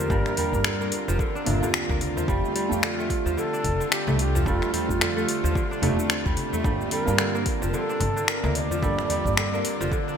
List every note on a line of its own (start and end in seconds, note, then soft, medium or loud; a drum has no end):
0.00 0.64 D3 medium
0.00 10.17 D3 medium
0.00 0.70 F3 medium
0.00 10.17 G3 medium
0.00 0.10 A#3 medium
0.00 0.80 A#3 medium
0.00 10.17 C4 medium
0.00 0.11 D4 medium
0.00 0.85 D4 medium
0.00 10.17 F4 medium
0.00 0.54 G4 loud
0.00 10.17 G4 medium
0.00 1.46 A#4 loud
0.00 2.28 A#4 medium
0.10 0.22 G1 loud
0.10 0.36 G3 medium
0.10 0.49 A#3 medium
0.10 0.50 D4 medium
0.10 0.50 A#4 loud
0.10 kick loud
0.10 cabasa medium
0.26 finger snap soft
0.26 tabla na medium
0.26 cabasa soft
0.37 0.70 G3 medium
0.37 open hi-hat medium
0.37 tabla ge medium
0.52 0.87 G2 medium
0.52 0.59 A#3 medium
0.52 0.59 D4 medium
0.52 0.60 G4 medium
0.52 kick medium
0.52 cabasa medium
0.64 1.18 D3 medium
0.64 finger snap loud
0.64 cabasa medium
0.81 1.89 A#3 medium
0.81 cabasa soft
0.92 open hi-hat medium
1.08 1.17 F1 medium
1.08 1.24 F3 medium
1.08 cabasa medium
1.19 1.61 D3 medium
1.19 kick loud
1.19 cabasa medium
1.35 3.03 D4 medium
1.35 cabasa soft
1.45 1.59 G1 medium
1.45 1.58 A#3 medium
1.45 1.58 D4 medium
1.45 1.59 F4 loud
1.45 open hi-hat medium
1.45 tabla na medium
1.45 low conga medium
1.45 tabla ge loud
1.60 2.33 D3 medium
1.60 2.25 A#3 medium
1.60 2.25 D4 medium
1.60 2.26 G4 medium
1.60 tabla tin soft
1.60 cabasa medium
1.74 finger snap loud
1.74 cabasa medium
1.89 2.24 D2 loud
1.89 3.05 A#3 medium
1.89 kick loud
1.89 cabasa soft
2.01 open hi-hat medium
2.01 low conga medium
2.16 2.33 F3 medium
2.16 tabla na medium
2.16 tabla ge medium
2.16 cabasa medium
2.28 2.40 F1 loud
2.28 2.54 G3 medium
2.28 2.67 A3 medium
2.28 2.68 F4 medium
2.28 2.68 G4 medium
2.28 kick loud
2.28 cabasa medium
2.44 tabla na medium
2.44 cabasa soft
2.55 2.88 G3 medium
2.55 open hi-hat medium
2.69 3.05 F2 medium
2.69 4.43 A3 medium
2.69 4.44 F4 medium
2.69 4.45 G4 loud
2.69 cabasa medium
2.83 3.36 D3 medium
2.83 3.34 F4 medium
2.83 finger snap loud
2.83 cabasa medium
2.99 4.07 A3 medium
2.99 cabasa soft
3.10 kick loud
3.10 open hi-hat medium
3.25 3.34 D#2 medium
3.25 3.42 F3 medium
3.25 cabasa medium
3.37 3.79 D3 medium
3.37 3.88 A4 loud
3.37 tabla tin soft
3.37 cabasa medium
3.45 6.65 A4 medium
3.53 5.21 D4 medium
3.53 cabasa soft
3.64 3.76 F1 medium
3.64 kick medium
3.64 open hi-hat medium
3.64 tabla tin medium
3.64 low conga medium
3.80 5.00 D3 medium
3.80 cabasa medium
3.92 4.17 G4 loud
3.92 finger snap loud
3.92 cabasa medium
4.07 4.42 C2 loud
4.07 5.16 A3 medium
4.07 tabla na medium
4.07 low conga medium
4.07 cabasa soft
4.18 4.45 G4 loud
4.18 open hi-hat medium
4.18 tabla tin soft
4.35 5.06 F3 medium
4.35 tabla ge medium
4.35 cabasa medium
4.46 4.58 F1 loud
4.46 4.72 G3 medium
4.46 4.85 A3 medium
4.46 4.72 F4 loud
4.46 4.86 F4 medium
4.46 4.86 A4 loud
4.46 kick loud
4.46 cabasa medium
4.62 finger snap soft
4.62 tabla na medium
4.62 cabasa soft
4.73 5.06 G3 medium
4.73 6.34 F4 loud
4.73 open hi-hat medium
4.73 tabla ge medium
4.88 5.24 F2 medium
4.88 4.95 A3 medium
4.88 4.96 F4 medium
4.88 4.96 G4 medium
4.88 kick medium
4.88 cabasa medium
5.01 5.54 D3 medium
5.01 finger snap loud
5.01 cabasa medium
5.17 5.82 A3 medium
5.17 cabasa soft
5.29 open hi-hat medium
5.44 5.53 D#2 medium
5.44 5.61 F3 medium
5.44 cabasa medium
5.55 6.70 D3 medium
5.55 kick loud
5.55 cabasa medium
5.71 7.39 D4 medium
5.71 cabasa soft
5.82 5.95 F1 loud
5.82 5.94 A3 medium
5.82 6.53 A3 medium
5.82 5.95 F4 medium
5.82 5.95 G4 medium
5.82 open hi-hat medium
5.82 tabla na medium
5.82 tabla ge loud
5.82 low conga medium
5.97 6.61 A3 medium
5.97 6.62 F4 medium
5.97 tabla tin soft
5.97 cabasa medium
6.01 6.63 G4 medium
6.10 finger snap loud
6.10 cabasa medium
6.26 6.34 D#2 medium
6.26 6.63 G3 medium
6.26 kick loud
6.26 cabasa soft
6.37 open hi-hat medium
6.37 low conga medium
6.53 7.41 A3 medium
6.53 tabla na medium
6.53 tabla ge medium
6.53 cabasa medium
6.64 6.76 G1 loud
6.64 6.90 G3 medium
6.64 7.04 A#3 medium
6.64 7.04 D4 medium
6.64 7.05 G4 medium
6.64 kick loud
6.64 cabasa medium
6.81 tabla na medium
6.81 cabasa soft
6.91 7.24 G3 medium
6.91 7.43 A#4 loud
6.91 open hi-hat medium
7.05 7.42 G2 medium
7.05 8.79 A#3 loud
7.05 8.80 D4 medium
7.05 cabasa medium
7.10 8.81 G4 loud
7.18 7.72 D3 medium
7.18 finger snap loud
7.18 cabasa medium
7.35 8.43 A#3 medium
7.35 cabasa soft
7.46 10.17 A#3 medium
7.46 kick loud
7.46 open hi-hat medium
7.46 tabla tin soft
7.62 7.71 F1 medium
7.62 7.79 F3 medium
7.62 cabasa medium
7.68 7.75 A#4 medium
7.73 8.15 D3 medium
7.73 7.80 A#4 loud
7.73 tabla tin medium
7.73 cabasa medium
7.79 8.31 A4 loud
7.89 9.57 D4 medium
7.89 cabasa soft
8.00 8.13 G1 loud
8.00 kick medium
8.00 open hi-hat medium
8.00 tabla tin medium
8.00 low conga medium
8.16 9.36 D3 medium
8.16 cabasa medium
8.28 8.58 A#4 loud
8.28 finger snap loud
8.28 cabasa medium
8.44 8.78 D2 loud
8.44 9.53 A#3 medium
8.44 tabla na medium
8.44 low conga medium
8.44 cabasa soft
8.55 8.62 D#5 loud
8.55 open hi-hat medium
8.55 tabla tin soft
8.61 10.17 D5 loud
8.70 9.42 F3 medium
8.70 tabla ge medium
8.70 cabasa medium
8.82 8.95 G1 loud
8.82 9.09 G3 medium
8.82 9.22 A#3 medium
8.82 9.22 D4 medium
8.82 9.23 A4 medium
8.82 kick loud
8.82 cabasa medium
8.99 finger snap soft
8.99 tabla na medium
8.99 cabasa soft
9.10 9.42 G3 medium
9.10 open hi-hat medium
9.10 tabla ge medium
9.25 9.60 G2 medium
9.25 9.32 A#3 medium
9.25 9.32 D4 medium
9.25 9.33 G4 medium
9.25 kick medium
9.25 cabasa medium
9.37 9.91 D3 medium
9.37 finger snap loud
9.37 cabasa medium
9.53 10.17 A#3 medium
9.53 cabasa soft
9.65 open hi-hat medium
9.80 9.89 F1 medium
9.80 9.97 F3 medium
9.80 cabasa medium
9.92 10.17 D3 medium
9.92 kick loud
9.92 cabasa medium
10.08 10.17 D4 medium
10.08 cabasa soft